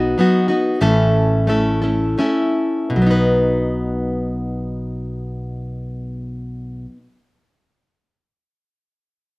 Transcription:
Already playing: fingered electric bass B1, steel-string acoustic guitar B3 D#4 F#4
0.18 steel-string acoustic guitar F#3 B3 D#4 F#4
0.48 steel-string acoustic guitar B3 D#4 F#4
0.81 fingered electric bass A1, steel-string acoustic guitar A2 E3 A3 C#4 E4 A4
1.47 steel-string acoustic guitar A3 C#4 E4 A4
1.82 steel-string acoustic guitar A3 C#4 E4 A4
2.18 steel-string acoustic guitar A3 C#4 E4 A4
2.90 steel-string acoustic guitar B2
2.96 fingered electric bass B1, steel-string acoustic guitar F#3
3.02 steel-string acoustic guitar B3
3.06 steel-string acoustic guitar D#4
3.11 steel-string acoustic guitar B4

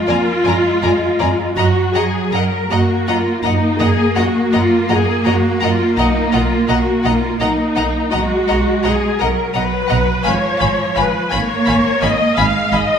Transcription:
Already playing: viola section F4
0.07 double bass section F2, cello section A#3, violin section D5 G#5 A#5
0.44 double bass section F2, cello section G#3, violin section D5 G#5 A#5
0.82 double bass section F2, violin section D5 G#5 A#5
1.19 double bass section F2, violin section D5 G#5 A#5
1.56 double bass section F#2, cello section F#3, viola section F#4, violin section D#5 F#5 A#5
1.94 double bass section F#2, viola section G#4, violin section D#5 F#5 A#5
2.31 double bass section F#2, viola section A#4, violin section A#5
2.36 violin section D#5 F#5
2.70 double bass section F#2, cello section A#3, viola section F#4, violin section D#5 F#5 A#5
3.07 double bass section F#2, viola section F4, violin section D#5 F#5 A#5
3.44 double bass section F#2, viola section D#4, violin section D#5 F#5 A#5
3.79 double bass section F#2, viola section G#4, violin section D#5 F#5 A#5
4.16 double bass section F#2, viola section F#4, violin section D#5 F#5 A#5
4.52 double bass section F#2, viola section F4, violin section D#5 F#5 A#5
4.89 double bass section F#2, viola section G#4, violin section D#5 F#5 A#5
5.25 double bass section F#2, viola section F#4, violin section D#5 F#5 A#5
5.60 double bass section F#2, viola section F4, violin section D#5 F#5 A#5
5.97 double bass section B1, viola section D#4, violin section D#5 F#5 A#5
6.33 double bass section B1, viola section F4, violin section D#5 F#5 A#5
6.69 double bass section B1, viola section F#4, violin section D#5 F#5 A#5
7.04 double bass section B1, viola section F4, violin section D#5 F#5 A#5
7.40 double bass section B1, viola section D#4, violin section D#5 F#5 A#5
7.76 double bass section B1, violin section D#5 F#5 A#5
8.11 double bass section B1, cello section G#3, viola section F#4, violin section D#5 F#5 A#5
8.47 double bass section B1, violin section D#5 F#5 A#5
8.84 double bass section B1, viola section G#4, violin section D#5 F#5 A#5
9.19 double bass section B1, cello section F#3, viola section A#4, violin section D#5 F#5 A#5
9.54 double bass section B1, viola section B4, violin section D#5 F#5 A#5
9.89 double bass section B1, violin section D#5 F#5 A#5
10.24 double bass section G#1, cello section F3, viola section C#5, violin section F5 G#5 B5
10.58 double bass section G#1, violin section F5 G#5 B5
10.96 double bass section G#1, viola section B4, violin section F5 G#5 B5
11.31 double bass section G#1, cello section A#3, viola section C#5, violin section F5 G#5 B5
11.67 double bass section G#1, violin section F5 G#5 B5
12.01 double bass section G#1, viola section D#5, violin section F5 G#5 B5
12.36 double bass section G#1, cello section G#3, violin section F5 G#5 B5, viola section F5
12.72 double bass section G#1, viola section D#5, violin section F5 G#5 B5

